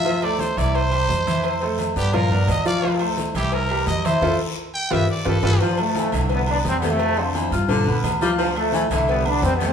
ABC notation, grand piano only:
X:1
M:4/4
L:1/8
Q:1/4=173
K:C
V:1 name="Grand piano"
[F,Ff] [A,Ac]2 [E,Ee]2 [G,Gc]2 [E,Ee]- | [E,Ee] [A,Ac]2 [B,Bd] [F,Ff] [B,Bd]2 [F,Ff] | [F,Ff] [A,Ac]2 [E,Ee]2 [G,GB]2 [E,Ee] | [EFA] z3 [FGB] z [FGB] [FGB] |
[F,Ff] [A,Aa]2 [E,Ee]2 [B,Bb]2 [A,Aa]- | [A,Aa] [Ccc']2 [Fff']2 [B,Bb]2 [F,Ff] | [F,Ff] [A,Aa]2 [E,Ee]2 [B,Bb]2 [A,Aa] |]